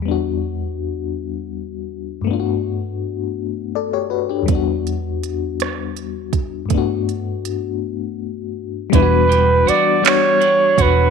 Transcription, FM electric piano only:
X:1
M:6/8
L:1/16
Q:3/8=54
K:Edor
V:1 name="FM electric piano"
z12 | z8 [Ad] [Gc] [FB] [DG]- | [DG] z8 z3 | z12 |
z12 |]
V:2 name="FM electric piano"
[E,,G,B,DF]12 | [G,,A,B,D=F^F]12 | [E,,G,B,DF]12 | [G,,A,B,DF]12 |
[G,B,DEF]4 z2 [G,B,DF]4 z2 |]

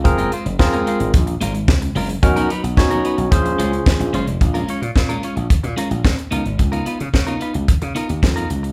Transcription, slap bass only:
X:1
M:4/4
L:1/16
Q:1/4=110
K:Dbmix
V:1 name="Slap bass" clef=bass
G,,,2 z G,,, G,,2 z A,,, B,,,2 A,,,2 D,,2 G,,,2 | =B,,,2 z B,,, =B,,2 z B,,, _B,,,2 D,,2 z B,,, G,,, F,,, | B,,,2 z B,, B,,2 z B,,, z B,, z B,,, B,, z D,, A,,, | D,,2 z D, D,2 z D,, z D, z E,, F,,2 D,,2 |]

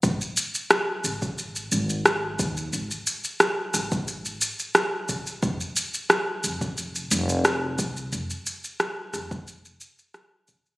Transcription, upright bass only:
X:1
M:4/4
L:1/8
Q:1/4=89
K:Ab
V:1 name="Upright bass" clef=bass
A,,, z2 A,,,2 A,,,2 E,, | A,,, z2 A,,,2 z3 | F,,, z2 F,,,2 F,,,2 C,, | F,,, z2 F,,,2 z3 |]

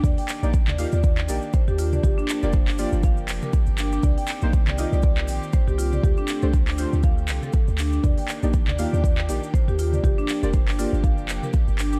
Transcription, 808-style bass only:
X:1
M:4/4
L:1/16
Q:"Swing 16ths" 1/4=120
K:Gm
V:1 name="808-style bass" clef=bass
E,, z2 B,,,2 E,, z E,,3 B,,, z2 E,,3 | G,,, z2 F,,,2 G,,, z G,,,3 F,,, z2 G,,,3 | C,, z2 B,,,2 C,, z C,,3 B,,, z2 C,,3 | D,, z2 C,,2 D,, z D,,3 C,, z2 D,,3 |
E,, z2 B,,,2 E,, z E,,3 B,,, z2 E,,3 | G,,, z2 F,,,2 G,,, z G,,,3 F,,, z2 G,,,3 |]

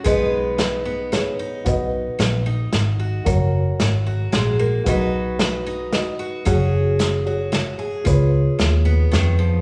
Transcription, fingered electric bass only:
X:1
M:3/4
L:1/8
Q:1/4=112
K:B
V:1 name="Fingered electric bass" clef=bass
B,,,6 | B,,,2 A,,,2 G,,,2 | F,,,2 G,,,2 A,,,2 | B,,,6 |
F,,,6 | C,,2 D,,2 ^E,,2 |]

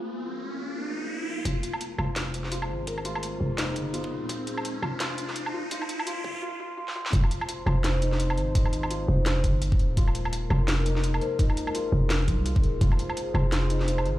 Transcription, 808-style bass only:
X:1
M:4/4
L:1/8
Q:"Swing 16ths" 1/4=169
K:Fm
V:1 name="808-style bass" clef=bass
z8 | F,,, z2 F,,,4 A,,,- | A,,,3 F,,,2 G,,,2 E,,,- | E,,,3 F,,,4 z |
z3 F,,, z4 | F,,, z2 F,,,4 A,,,- | A,,,3 F,,,2 G,,,2 E,,,- | E,,,3 F,,,4 z |
z3 F,,,2 C,,2 E,,, | F,,, z2 F,,,4 A,,, |]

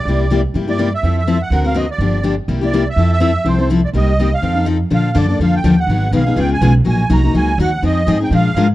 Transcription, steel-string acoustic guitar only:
X:1
M:4/4
L:1/8
Q:"Swing" 1/4=247
K:F
V:1 name="Steel-string acoustic guitar"
[C,G,B,EG] z [C,G,B,EG] z [C,G,B,EG] [B,EG] [C,G,B,EG] z | [F,CEA] z [F,CEA] z [D,^A,C^F^A] [CFA] [D,A,CFA] z | [D,F,B,DG] z [D,F,B,DG] z [C,G,B,EG] [B,EG] [C,G,B,EG] z | [F,CEA] z [F,CEA] z [F,CEA] [CEA] [F,CEA] z |
[C,G,B,_EG] z [C,G,B,EG] z [F,CEA] [CEA] [F,CEA] z | [K:Fmix] [D,F,B,DA] z [D,F,B,DA] [B,DA] [D,F,B,DA] z [D,F,B,DA] z | [E,_G,_CE_A] z [E,G,CEA] [CEA] [_D,_A,CFA] z [D,A,CFA] z | [_G,B,E_G] z [G,B,EG] [B,EG] [G,B,EG] z [G,B,EG] z |
[F,CE_A] z [F,CEA] [CEA] [F,_A,DFB] z [F,A,DFB] z |]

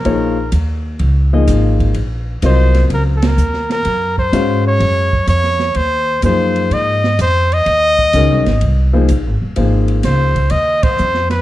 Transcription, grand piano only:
X:1
M:4/4
L:1/8
Q:"Swing" 1/4=126
K:Ebdor
V:1 name="Grand piano"
[F,B,EAd] z4 [F,B,EAe]3 | z2 [G,CFBe]3 z3 | z2 [A,DGdf]3 z3 | z2 [F,B,EAc]3 z3 |
z2 [E,A,DGB] z2 [F,B,EAc] z2 | [F,B,EAc]3 z4 z |]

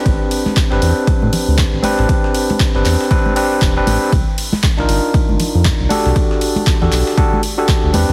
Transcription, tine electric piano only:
X:1
M:4/4
L:1/16
Q:"Swing 16ths" 1/4=118
K:Am
V:1 name="Tine electric piano"
[CDGB]4- [CDGB] [CDGB]8- [CDGB] [CDGB]2- | [CDGB]4- [CDGB] [CDGB]3 [CDGB]2 [CDGB]3 [CDGB]3 | z4 z [D_EF_B]8- [DEFB] [D^FGA]2- | [D^FGA]4- [DFGA] [DFGA]3 [DFGA]2 z [DFGA]3 [CDGB]2 |]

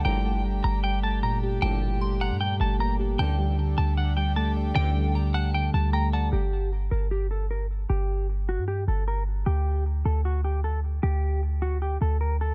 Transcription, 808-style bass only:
X:1
M:4/4
L:1/16
Q:1/4=153
K:Dphr
V:1 name="808-style bass" clef=bass
G,,,6 G,,,8- G,,,2 | G,,,6- G,,, G,,3 G,,,6 | D,,6 D,,8- D,,2 | D,,8- D,,2 D,,6 |
G,,,6 G,,,8- G,,,2 | G,,,6- G,,, G,,3 G,,,6 | D,,6 D,,8- D,,2 | D,,8- D,,2 D,,6 |]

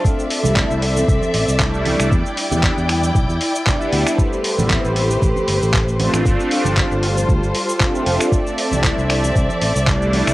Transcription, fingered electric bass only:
X:1
M:4/4
L:1/16
Q:"Swing 16ths" 1/4=116
K:C
V:1 name="Fingered electric bass" clef=bass
z3 C,, z C,,3 C,, z A,,, C,,4 C,, | E,, z2 E,, z E,,3 B,,, E,, z4 D,, z | z3 A,,, z A,,,3 A,,, z G,,, A,,,4 A,,, | G,,, z2 G,,, z G,,,3 D,, G,,, z4 F,,, z |
z3 C,, z C,,3 C,, z A,,, C,,4 C,, |]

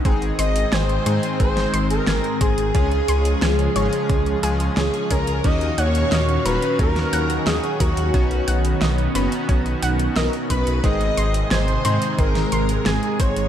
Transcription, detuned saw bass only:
X:1
M:4/4
L:1/16
Q:1/4=89
K:Abdor
V:1 name="Detuned saw bass" clef=bass
A,,,2 A,,,2 A,,,2 A,, z A,,,2 A,,,2 A,,, z A,,, A,,, | D,,2 D,,2 D,,2 A,,, z D,,2 D,,2 D,, z D,, D,, | E,,2 E,,2 E,,2 E,,, z E,,2 E,,2 E,, z E,, E,, | =B,,,2 B,,,2 B,,,2 ^F,,, z B,,,2 B,,,2 B,,, z B,,, B,,, |
A,,,2 A,,,2 A,,,2 A,, z A,,,2 A,,,2 A,,, z A,,, A,,, |]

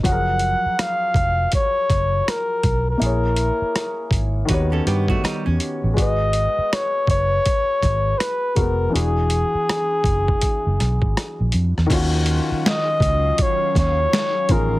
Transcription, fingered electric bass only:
X:1
M:4/4
L:1/16
Q:"Swing 16ths" 1/4=81
K:Ebm
V:1 name="Fingered electric bass" clef=bass
G,,,3 z3 F,,,2 z2 G,,,2 z2 C,,2 | B,,,3 z3 A,,,2 E,,2 =G,,2 z _F,, z =A,,, | A,,,3 z3 G,,,2 z2 A,,,2 z2 F,,,2 | =E,,,3 z3 ^F,,,2 z F,,, =B,,, ^G,,, z _B,,, =F,, =E,, |
E,,3 z3 D,,2 z2 E,,2 z2 =A,,,2 |]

